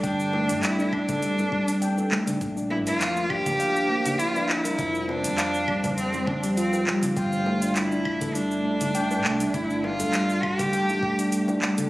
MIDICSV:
0, 0, Header, 1, 6, 480
1, 0, Start_track
1, 0, Tempo, 594059
1, 31, Time_signature, 4, 2, 24, 8
1, 9613, End_track
2, 0, Start_track
2, 0, Title_t, "Cello"
2, 0, Program_c, 0, 42
2, 30, Note_on_c, 0, 62, 113
2, 507, Note_on_c, 0, 64, 102
2, 519, Note_off_c, 0, 62, 0
2, 749, Note_on_c, 0, 62, 112
2, 761, Note_off_c, 0, 64, 0
2, 1710, Note_off_c, 0, 62, 0
2, 2187, Note_on_c, 0, 64, 103
2, 2246, Note_off_c, 0, 64, 0
2, 2318, Note_on_c, 0, 65, 114
2, 2667, Note_on_c, 0, 67, 127
2, 2679, Note_off_c, 0, 65, 0
2, 3382, Note_on_c, 0, 65, 114
2, 3394, Note_off_c, 0, 67, 0
2, 3624, Note_on_c, 0, 64, 112
2, 3636, Note_off_c, 0, 65, 0
2, 4104, Note_on_c, 0, 62, 117
2, 4116, Note_off_c, 0, 64, 0
2, 4816, Note_off_c, 0, 62, 0
2, 4820, Note_on_c, 0, 60, 96
2, 5059, Note_on_c, 0, 62, 85
2, 5071, Note_off_c, 0, 60, 0
2, 5298, Note_off_c, 0, 62, 0
2, 5303, Note_on_c, 0, 60, 97
2, 5650, Note_off_c, 0, 60, 0
2, 5784, Note_on_c, 0, 65, 94
2, 6263, Note_on_c, 0, 64, 103
2, 6276, Note_off_c, 0, 65, 0
2, 6741, Note_on_c, 0, 62, 106
2, 6753, Note_off_c, 0, 64, 0
2, 7705, Note_on_c, 0, 64, 102
2, 7717, Note_off_c, 0, 62, 0
2, 7952, Note_on_c, 0, 65, 111
2, 7964, Note_off_c, 0, 64, 0
2, 8427, Note_on_c, 0, 67, 109
2, 8439, Note_off_c, 0, 65, 0
2, 9389, Note_off_c, 0, 67, 0
2, 9613, End_track
3, 0, Start_track
3, 0, Title_t, "Handpan"
3, 0, Program_c, 1, 114
3, 27, Note_on_c, 1, 79, 100
3, 258, Note_off_c, 1, 79, 0
3, 267, Note_on_c, 1, 57, 78
3, 392, Note_off_c, 1, 57, 0
3, 398, Note_on_c, 1, 62, 79
3, 504, Note_off_c, 1, 62, 0
3, 636, Note_on_c, 1, 62, 110
3, 743, Note_off_c, 1, 62, 0
3, 878, Note_on_c, 1, 69, 76
3, 979, Note_off_c, 1, 69, 0
3, 988, Note_on_c, 1, 55, 81
3, 1218, Note_off_c, 1, 55, 0
3, 1230, Note_on_c, 1, 62, 77
3, 1353, Note_off_c, 1, 62, 0
3, 1469, Note_on_c, 1, 79, 103
3, 1699, Note_off_c, 1, 79, 0
3, 1708, Note_on_c, 1, 57, 75
3, 1833, Note_off_c, 1, 57, 0
3, 1839, Note_on_c, 1, 62, 77
3, 1945, Note_off_c, 1, 62, 0
3, 2077, Note_on_c, 1, 62, 97
3, 2184, Note_off_c, 1, 62, 0
3, 2317, Note_on_c, 1, 70, 79
3, 2418, Note_off_c, 1, 70, 0
3, 2428, Note_on_c, 1, 53, 81
3, 2658, Note_off_c, 1, 53, 0
3, 2668, Note_on_c, 1, 62, 77
3, 2792, Note_off_c, 1, 62, 0
3, 2905, Note_on_c, 1, 77, 100
3, 3137, Note_off_c, 1, 77, 0
3, 3146, Note_on_c, 1, 58, 79
3, 3272, Note_off_c, 1, 58, 0
3, 3276, Note_on_c, 1, 62, 73
3, 3383, Note_off_c, 1, 62, 0
3, 3516, Note_on_c, 1, 62, 91
3, 3623, Note_off_c, 1, 62, 0
3, 3757, Note_on_c, 1, 70, 81
3, 3858, Note_off_c, 1, 70, 0
3, 3866, Note_on_c, 1, 53, 91
3, 4097, Note_off_c, 1, 53, 0
3, 4106, Note_on_c, 1, 60, 78
3, 4231, Note_off_c, 1, 60, 0
3, 4345, Note_on_c, 1, 77, 102
3, 4577, Note_off_c, 1, 77, 0
3, 4587, Note_on_c, 1, 55, 72
3, 4712, Note_off_c, 1, 55, 0
3, 4718, Note_on_c, 1, 60, 75
3, 4824, Note_off_c, 1, 60, 0
3, 4957, Note_on_c, 1, 60, 96
3, 5064, Note_off_c, 1, 60, 0
3, 5199, Note_on_c, 1, 55, 90
3, 5299, Note_off_c, 1, 55, 0
3, 5311, Note_on_c, 1, 65, 97
3, 5434, Note_off_c, 1, 65, 0
3, 5550, Note_on_c, 1, 67, 76
3, 5667, Note_off_c, 1, 67, 0
3, 5790, Note_on_c, 1, 79, 103
3, 6020, Note_off_c, 1, 79, 0
3, 6030, Note_on_c, 1, 57, 79
3, 6153, Note_off_c, 1, 57, 0
3, 6158, Note_on_c, 1, 62, 84
3, 6264, Note_off_c, 1, 62, 0
3, 6397, Note_on_c, 1, 62, 99
3, 6504, Note_off_c, 1, 62, 0
3, 6638, Note_on_c, 1, 69, 77
3, 6739, Note_off_c, 1, 69, 0
3, 6750, Note_on_c, 1, 55, 76
3, 6980, Note_off_c, 1, 55, 0
3, 6988, Note_on_c, 1, 62, 79
3, 7113, Note_off_c, 1, 62, 0
3, 7230, Note_on_c, 1, 79, 102
3, 7460, Note_off_c, 1, 79, 0
3, 7471, Note_on_c, 1, 57, 79
3, 7594, Note_off_c, 1, 57, 0
3, 7600, Note_on_c, 1, 62, 82
3, 7705, Note_off_c, 1, 62, 0
3, 7840, Note_on_c, 1, 62, 102
3, 7945, Note_off_c, 1, 62, 0
3, 8080, Note_on_c, 1, 69, 83
3, 8180, Note_off_c, 1, 69, 0
3, 8191, Note_on_c, 1, 55, 83
3, 8420, Note_off_c, 1, 55, 0
3, 8430, Note_on_c, 1, 62, 71
3, 8553, Note_off_c, 1, 62, 0
3, 8669, Note_on_c, 1, 79, 103
3, 8899, Note_off_c, 1, 79, 0
3, 8910, Note_on_c, 1, 57, 80
3, 9033, Note_off_c, 1, 57, 0
3, 9038, Note_on_c, 1, 62, 71
3, 9144, Note_off_c, 1, 62, 0
3, 9278, Note_on_c, 1, 62, 93
3, 9385, Note_off_c, 1, 62, 0
3, 9517, Note_on_c, 1, 69, 80
3, 9613, Note_off_c, 1, 69, 0
3, 9613, End_track
4, 0, Start_track
4, 0, Title_t, "Ambient pad"
4, 0, Program_c, 2, 92
4, 0, Note_on_c, 2, 55, 83
4, 0, Note_on_c, 2, 69, 77
4, 25, Note_on_c, 2, 60, 91
4, 1916, Note_off_c, 2, 69, 0
4, 1917, Note_off_c, 2, 55, 0
4, 1929, Note_off_c, 2, 60, 0
4, 1951, Note_on_c, 2, 53, 86
4, 1951, Note_on_c, 2, 58, 77
4, 1951, Note_on_c, 2, 62, 89
4, 3852, Note_off_c, 2, 53, 0
4, 3852, Note_off_c, 2, 58, 0
4, 3852, Note_off_c, 2, 62, 0
4, 3871, Note_on_c, 2, 53, 78
4, 3871, Note_on_c, 2, 55, 80
4, 3873, Note_on_c, 2, 60, 92
4, 5772, Note_off_c, 2, 53, 0
4, 5772, Note_off_c, 2, 55, 0
4, 5773, Note_off_c, 2, 60, 0
4, 5792, Note_on_c, 2, 62, 90
4, 5794, Note_on_c, 2, 55, 84
4, 5794, Note_on_c, 2, 57, 73
4, 9600, Note_off_c, 2, 55, 0
4, 9600, Note_off_c, 2, 57, 0
4, 9613, Note_off_c, 2, 62, 0
4, 9613, End_track
5, 0, Start_track
5, 0, Title_t, "Upright bass"
5, 0, Program_c, 3, 32
5, 30, Note_on_c, 3, 31, 89
5, 401, Note_on_c, 3, 43, 84
5, 413, Note_off_c, 3, 31, 0
5, 1883, Note_off_c, 3, 43, 0
5, 1949, Note_on_c, 3, 34, 100
5, 2318, Note_off_c, 3, 34, 0
5, 2318, Note_on_c, 3, 29, 89
5, 3802, Note_off_c, 3, 29, 0
5, 3869, Note_on_c, 3, 29, 93
5, 4241, Note_on_c, 3, 41, 82
5, 4253, Note_off_c, 3, 29, 0
5, 5723, Note_off_c, 3, 41, 0
5, 5790, Note_on_c, 3, 31, 94
5, 7472, Note_off_c, 3, 31, 0
5, 7472, Note_on_c, 3, 36, 79
5, 7626, Note_off_c, 3, 36, 0
5, 7710, Note_on_c, 3, 31, 95
5, 8080, Note_on_c, 3, 43, 86
5, 8092, Note_off_c, 3, 31, 0
5, 9563, Note_off_c, 3, 43, 0
5, 9613, End_track
6, 0, Start_track
6, 0, Title_t, "Drums"
6, 29, Note_on_c, 9, 36, 118
6, 30, Note_on_c, 9, 46, 46
6, 31, Note_on_c, 9, 69, 60
6, 110, Note_off_c, 9, 36, 0
6, 111, Note_off_c, 9, 46, 0
6, 111, Note_off_c, 9, 69, 0
6, 159, Note_on_c, 9, 69, 38
6, 240, Note_off_c, 9, 69, 0
6, 270, Note_on_c, 9, 60, 67
6, 271, Note_on_c, 9, 63, 34
6, 350, Note_off_c, 9, 60, 0
6, 352, Note_off_c, 9, 63, 0
6, 396, Note_on_c, 9, 63, 37
6, 399, Note_on_c, 9, 46, 58
6, 399, Note_on_c, 9, 69, 69
6, 477, Note_off_c, 9, 63, 0
6, 479, Note_off_c, 9, 46, 0
6, 480, Note_off_c, 9, 69, 0
6, 510, Note_on_c, 9, 39, 82
6, 510, Note_on_c, 9, 46, 43
6, 510, Note_on_c, 9, 69, 58
6, 590, Note_off_c, 9, 39, 0
6, 590, Note_off_c, 9, 46, 0
6, 591, Note_off_c, 9, 69, 0
6, 641, Note_on_c, 9, 69, 34
6, 722, Note_off_c, 9, 69, 0
6, 749, Note_on_c, 9, 36, 98
6, 749, Note_on_c, 9, 75, 70
6, 830, Note_off_c, 9, 36, 0
6, 830, Note_off_c, 9, 75, 0
6, 878, Note_on_c, 9, 46, 56
6, 879, Note_on_c, 9, 36, 113
6, 879, Note_on_c, 9, 69, 70
6, 881, Note_on_c, 9, 60, 52
6, 884, Note_on_c, 9, 64, 101
6, 959, Note_off_c, 9, 36, 0
6, 959, Note_off_c, 9, 46, 0
6, 960, Note_off_c, 9, 69, 0
6, 962, Note_off_c, 9, 60, 0
6, 965, Note_off_c, 9, 64, 0
6, 990, Note_on_c, 9, 46, 47
6, 990, Note_on_c, 9, 69, 60
6, 1070, Note_off_c, 9, 46, 0
6, 1071, Note_off_c, 9, 69, 0
6, 1119, Note_on_c, 9, 63, 61
6, 1120, Note_on_c, 9, 69, 36
6, 1124, Note_on_c, 9, 60, 53
6, 1199, Note_off_c, 9, 63, 0
6, 1201, Note_off_c, 9, 69, 0
6, 1205, Note_off_c, 9, 60, 0
6, 1229, Note_on_c, 9, 36, 113
6, 1310, Note_off_c, 9, 36, 0
6, 1358, Note_on_c, 9, 46, 56
6, 1359, Note_on_c, 9, 69, 69
6, 1439, Note_off_c, 9, 46, 0
6, 1440, Note_off_c, 9, 69, 0
6, 1470, Note_on_c, 9, 46, 42
6, 1471, Note_on_c, 9, 69, 54
6, 1551, Note_off_c, 9, 46, 0
6, 1552, Note_off_c, 9, 69, 0
6, 1594, Note_on_c, 9, 60, 48
6, 1599, Note_on_c, 9, 69, 32
6, 1675, Note_off_c, 9, 60, 0
6, 1680, Note_off_c, 9, 69, 0
6, 1709, Note_on_c, 9, 39, 84
6, 1715, Note_on_c, 9, 63, 96
6, 1790, Note_off_c, 9, 39, 0
6, 1796, Note_off_c, 9, 63, 0
6, 1835, Note_on_c, 9, 64, 100
6, 1838, Note_on_c, 9, 46, 57
6, 1838, Note_on_c, 9, 69, 69
6, 1916, Note_off_c, 9, 64, 0
6, 1919, Note_off_c, 9, 46, 0
6, 1919, Note_off_c, 9, 69, 0
6, 1949, Note_on_c, 9, 36, 127
6, 1949, Note_on_c, 9, 46, 43
6, 1949, Note_on_c, 9, 69, 61
6, 2029, Note_off_c, 9, 46, 0
6, 2030, Note_off_c, 9, 36, 0
6, 2030, Note_off_c, 9, 69, 0
6, 2078, Note_on_c, 9, 69, 39
6, 2159, Note_off_c, 9, 69, 0
6, 2185, Note_on_c, 9, 60, 65
6, 2266, Note_off_c, 9, 60, 0
6, 2317, Note_on_c, 9, 46, 57
6, 2318, Note_on_c, 9, 63, 37
6, 2318, Note_on_c, 9, 69, 71
6, 2398, Note_off_c, 9, 46, 0
6, 2398, Note_off_c, 9, 63, 0
6, 2399, Note_off_c, 9, 69, 0
6, 2430, Note_on_c, 9, 39, 81
6, 2430, Note_on_c, 9, 46, 43
6, 2431, Note_on_c, 9, 69, 61
6, 2511, Note_off_c, 9, 39, 0
6, 2511, Note_off_c, 9, 46, 0
6, 2512, Note_off_c, 9, 69, 0
6, 2558, Note_on_c, 9, 69, 34
6, 2639, Note_off_c, 9, 69, 0
6, 2667, Note_on_c, 9, 75, 74
6, 2669, Note_on_c, 9, 36, 103
6, 2748, Note_off_c, 9, 75, 0
6, 2750, Note_off_c, 9, 36, 0
6, 2797, Note_on_c, 9, 64, 106
6, 2798, Note_on_c, 9, 36, 115
6, 2798, Note_on_c, 9, 46, 55
6, 2798, Note_on_c, 9, 69, 75
6, 2799, Note_on_c, 9, 60, 51
6, 2878, Note_off_c, 9, 64, 0
6, 2879, Note_off_c, 9, 36, 0
6, 2879, Note_off_c, 9, 46, 0
6, 2879, Note_off_c, 9, 69, 0
6, 2880, Note_off_c, 9, 60, 0
6, 2908, Note_on_c, 9, 46, 42
6, 2908, Note_on_c, 9, 69, 62
6, 2989, Note_off_c, 9, 46, 0
6, 2989, Note_off_c, 9, 69, 0
6, 3038, Note_on_c, 9, 69, 37
6, 3119, Note_off_c, 9, 69, 0
6, 3277, Note_on_c, 9, 46, 54
6, 3278, Note_on_c, 9, 69, 68
6, 3280, Note_on_c, 9, 64, 81
6, 3358, Note_off_c, 9, 46, 0
6, 3358, Note_off_c, 9, 69, 0
6, 3361, Note_off_c, 9, 64, 0
6, 3390, Note_on_c, 9, 46, 42
6, 3390, Note_on_c, 9, 69, 58
6, 3471, Note_off_c, 9, 46, 0
6, 3471, Note_off_c, 9, 69, 0
6, 3521, Note_on_c, 9, 60, 50
6, 3521, Note_on_c, 9, 69, 33
6, 3601, Note_off_c, 9, 60, 0
6, 3602, Note_off_c, 9, 69, 0
6, 3630, Note_on_c, 9, 39, 79
6, 3711, Note_off_c, 9, 39, 0
6, 3756, Note_on_c, 9, 63, 36
6, 3758, Note_on_c, 9, 46, 57
6, 3759, Note_on_c, 9, 69, 69
6, 3837, Note_off_c, 9, 63, 0
6, 3839, Note_off_c, 9, 46, 0
6, 3840, Note_off_c, 9, 69, 0
6, 3867, Note_on_c, 9, 46, 42
6, 3868, Note_on_c, 9, 69, 59
6, 3869, Note_on_c, 9, 36, 122
6, 3948, Note_off_c, 9, 46, 0
6, 3949, Note_off_c, 9, 69, 0
6, 3950, Note_off_c, 9, 36, 0
6, 3997, Note_on_c, 9, 69, 37
6, 4078, Note_off_c, 9, 69, 0
6, 4111, Note_on_c, 9, 63, 34
6, 4112, Note_on_c, 9, 60, 67
6, 4192, Note_off_c, 9, 63, 0
6, 4193, Note_off_c, 9, 60, 0
6, 4237, Note_on_c, 9, 46, 59
6, 4238, Note_on_c, 9, 69, 74
6, 4240, Note_on_c, 9, 63, 38
6, 4318, Note_off_c, 9, 46, 0
6, 4319, Note_off_c, 9, 69, 0
6, 4320, Note_off_c, 9, 63, 0
6, 4349, Note_on_c, 9, 39, 76
6, 4349, Note_on_c, 9, 46, 42
6, 4349, Note_on_c, 9, 69, 58
6, 4429, Note_off_c, 9, 39, 0
6, 4429, Note_off_c, 9, 46, 0
6, 4430, Note_off_c, 9, 69, 0
6, 4478, Note_on_c, 9, 69, 35
6, 4559, Note_off_c, 9, 69, 0
6, 4588, Note_on_c, 9, 75, 75
6, 4589, Note_on_c, 9, 36, 102
6, 4669, Note_off_c, 9, 75, 0
6, 4670, Note_off_c, 9, 36, 0
6, 4718, Note_on_c, 9, 36, 112
6, 4719, Note_on_c, 9, 46, 56
6, 4719, Note_on_c, 9, 69, 65
6, 4720, Note_on_c, 9, 60, 54
6, 4721, Note_on_c, 9, 64, 99
6, 4799, Note_off_c, 9, 36, 0
6, 4799, Note_off_c, 9, 46, 0
6, 4800, Note_off_c, 9, 69, 0
6, 4801, Note_off_c, 9, 60, 0
6, 4801, Note_off_c, 9, 64, 0
6, 4830, Note_on_c, 9, 46, 45
6, 4830, Note_on_c, 9, 69, 58
6, 4910, Note_off_c, 9, 46, 0
6, 4911, Note_off_c, 9, 69, 0
6, 4950, Note_on_c, 9, 60, 50
6, 4958, Note_on_c, 9, 69, 35
6, 4964, Note_on_c, 9, 63, 60
6, 5031, Note_off_c, 9, 60, 0
6, 5039, Note_off_c, 9, 69, 0
6, 5044, Note_off_c, 9, 63, 0
6, 5069, Note_on_c, 9, 36, 115
6, 5073, Note_on_c, 9, 64, 82
6, 5150, Note_off_c, 9, 36, 0
6, 5154, Note_off_c, 9, 64, 0
6, 5200, Note_on_c, 9, 46, 51
6, 5200, Note_on_c, 9, 69, 65
6, 5281, Note_off_c, 9, 46, 0
6, 5281, Note_off_c, 9, 69, 0
6, 5312, Note_on_c, 9, 46, 40
6, 5312, Note_on_c, 9, 69, 58
6, 5392, Note_off_c, 9, 46, 0
6, 5393, Note_off_c, 9, 69, 0
6, 5438, Note_on_c, 9, 60, 51
6, 5440, Note_on_c, 9, 69, 36
6, 5519, Note_off_c, 9, 60, 0
6, 5520, Note_off_c, 9, 69, 0
6, 5550, Note_on_c, 9, 63, 77
6, 5551, Note_on_c, 9, 39, 74
6, 5631, Note_off_c, 9, 63, 0
6, 5632, Note_off_c, 9, 39, 0
6, 5675, Note_on_c, 9, 64, 84
6, 5678, Note_on_c, 9, 46, 55
6, 5679, Note_on_c, 9, 69, 72
6, 5756, Note_off_c, 9, 64, 0
6, 5759, Note_off_c, 9, 46, 0
6, 5760, Note_off_c, 9, 69, 0
6, 5790, Note_on_c, 9, 36, 117
6, 5790, Note_on_c, 9, 46, 43
6, 5790, Note_on_c, 9, 69, 57
6, 5871, Note_off_c, 9, 36, 0
6, 5871, Note_off_c, 9, 46, 0
6, 5871, Note_off_c, 9, 69, 0
6, 5919, Note_on_c, 9, 69, 36
6, 5999, Note_off_c, 9, 69, 0
6, 6030, Note_on_c, 9, 60, 61
6, 6111, Note_off_c, 9, 60, 0
6, 6157, Note_on_c, 9, 46, 55
6, 6158, Note_on_c, 9, 69, 69
6, 6161, Note_on_c, 9, 63, 37
6, 6238, Note_off_c, 9, 46, 0
6, 6239, Note_off_c, 9, 69, 0
6, 6242, Note_off_c, 9, 63, 0
6, 6268, Note_on_c, 9, 39, 72
6, 6268, Note_on_c, 9, 46, 43
6, 6269, Note_on_c, 9, 69, 55
6, 6349, Note_off_c, 9, 39, 0
6, 6349, Note_off_c, 9, 46, 0
6, 6350, Note_off_c, 9, 69, 0
6, 6397, Note_on_c, 9, 69, 33
6, 6478, Note_off_c, 9, 69, 0
6, 6507, Note_on_c, 9, 75, 83
6, 6510, Note_on_c, 9, 36, 98
6, 6588, Note_off_c, 9, 75, 0
6, 6590, Note_off_c, 9, 36, 0
6, 6632, Note_on_c, 9, 64, 100
6, 6637, Note_on_c, 9, 46, 53
6, 6637, Note_on_c, 9, 69, 64
6, 6639, Note_on_c, 9, 36, 113
6, 6640, Note_on_c, 9, 60, 48
6, 6713, Note_off_c, 9, 64, 0
6, 6717, Note_off_c, 9, 46, 0
6, 6718, Note_off_c, 9, 69, 0
6, 6720, Note_off_c, 9, 36, 0
6, 6720, Note_off_c, 9, 60, 0
6, 6748, Note_on_c, 9, 46, 44
6, 6749, Note_on_c, 9, 69, 61
6, 6829, Note_off_c, 9, 46, 0
6, 6830, Note_off_c, 9, 69, 0
6, 6877, Note_on_c, 9, 69, 36
6, 6958, Note_off_c, 9, 69, 0
6, 7117, Note_on_c, 9, 46, 49
6, 7117, Note_on_c, 9, 64, 78
6, 7118, Note_on_c, 9, 69, 62
6, 7198, Note_off_c, 9, 46, 0
6, 7198, Note_off_c, 9, 64, 0
6, 7198, Note_off_c, 9, 69, 0
6, 7230, Note_on_c, 9, 46, 43
6, 7230, Note_on_c, 9, 69, 55
6, 7310, Note_off_c, 9, 46, 0
6, 7311, Note_off_c, 9, 69, 0
6, 7360, Note_on_c, 9, 69, 33
6, 7362, Note_on_c, 9, 60, 52
6, 7441, Note_off_c, 9, 69, 0
6, 7443, Note_off_c, 9, 60, 0
6, 7468, Note_on_c, 9, 39, 74
6, 7549, Note_off_c, 9, 39, 0
6, 7598, Note_on_c, 9, 46, 56
6, 7599, Note_on_c, 9, 69, 69
6, 7606, Note_on_c, 9, 63, 36
6, 7679, Note_off_c, 9, 46, 0
6, 7679, Note_off_c, 9, 69, 0
6, 7687, Note_off_c, 9, 63, 0
6, 7709, Note_on_c, 9, 46, 45
6, 7709, Note_on_c, 9, 69, 53
6, 7710, Note_on_c, 9, 36, 110
6, 7790, Note_off_c, 9, 46, 0
6, 7790, Note_off_c, 9, 69, 0
6, 7791, Note_off_c, 9, 36, 0
6, 7840, Note_on_c, 9, 69, 33
6, 7921, Note_off_c, 9, 69, 0
6, 7950, Note_on_c, 9, 60, 63
6, 7952, Note_on_c, 9, 63, 38
6, 8031, Note_off_c, 9, 60, 0
6, 8033, Note_off_c, 9, 63, 0
6, 8078, Note_on_c, 9, 46, 59
6, 8079, Note_on_c, 9, 69, 68
6, 8088, Note_on_c, 9, 63, 36
6, 8159, Note_off_c, 9, 46, 0
6, 8160, Note_off_c, 9, 69, 0
6, 8169, Note_off_c, 9, 63, 0
6, 8189, Note_on_c, 9, 39, 76
6, 8189, Note_on_c, 9, 46, 44
6, 8189, Note_on_c, 9, 69, 56
6, 8270, Note_off_c, 9, 39, 0
6, 8270, Note_off_c, 9, 46, 0
6, 8270, Note_off_c, 9, 69, 0
6, 8319, Note_on_c, 9, 69, 33
6, 8399, Note_off_c, 9, 69, 0
6, 8429, Note_on_c, 9, 75, 80
6, 8430, Note_on_c, 9, 36, 94
6, 8509, Note_off_c, 9, 75, 0
6, 8511, Note_off_c, 9, 36, 0
6, 8559, Note_on_c, 9, 36, 98
6, 8560, Note_on_c, 9, 46, 57
6, 8560, Note_on_c, 9, 69, 64
6, 8561, Note_on_c, 9, 60, 51
6, 8572, Note_on_c, 9, 64, 87
6, 8640, Note_off_c, 9, 36, 0
6, 8640, Note_off_c, 9, 46, 0
6, 8641, Note_off_c, 9, 69, 0
6, 8642, Note_off_c, 9, 60, 0
6, 8652, Note_off_c, 9, 64, 0
6, 8671, Note_on_c, 9, 46, 46
6, 8672, Note_on_c, 9, 69, 55
6, 8752, Note_off_c, 9, 46, 0
6, 8752, Note_off_c, 9, 69, 0
6, 8799, Note_on_c, 9, 60, 46
6, 8801, Note_on_c, 9, 69, 34
6, 8805, Note_on_c, 9, 63, 59
6, 8880, Note_off_c, 9, 60, 0
6, 8882, Note_off_c, 9, 69, 0
6, 8886, Note_off_c, 9, 63, 0
6, 8910, Note_on_c, 9, 36, 106
6, 8991, Note_off_c, 9, 36, 0
6, 9041, Note_on_c, 9, 46, 54
6, 9041, Note_on_c, 9, 69, 64
6, 9122, Note_off_c, 9, 46, 0
6, 9122, Note_off_c, 9, 69, 0
6, 9149, Note_on_c, 9, 46, 42
6, 9149, Note_on_c, 9, 69, 54
6, 9229, Note_off_c, 9, 46, 0
6, 9230, Note_off_c, 9, 69, 0
6, 9276, Note_on_c, 9, 60, 55
6, 9279, Note_on_c, 9, 69, 29
6, 9357, Note_off_c, 9, 60, 0
6, 9360, Note_off_c, 9, 69, 0
6, 9387, Note_on_c, 9, 63, 75
6, 9388, Note_on_c, 9, 39, 78
6, 9467, Note_off_c, 9, 63, 0
6, 9468, Note_off_c, 9, 39, 0
6, 9518, Note_on_c, 9, 46, 55
6, 9518, Note_on_c, 9, 69, 71
6, 9521, Note_on_c, 9, 64, 83
6, 9599, Note_off_c, 9, 46, 0
6, 9599, Note_off_c, 9, 69, 0
6, 9601, Note_off_c, 9, 64, 0
6, 9613, End_track
0, 0, End_of_file